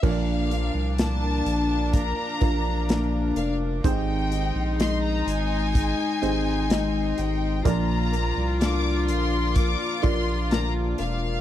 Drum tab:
CC |x-------|--------|--------|
HH |-xxxxxxx|xxxxxxxx|xxxxxxxx|
SD |--o---o-|--o---o-|--o---o-|
BD |o---oo--|o---o---|o---oo--|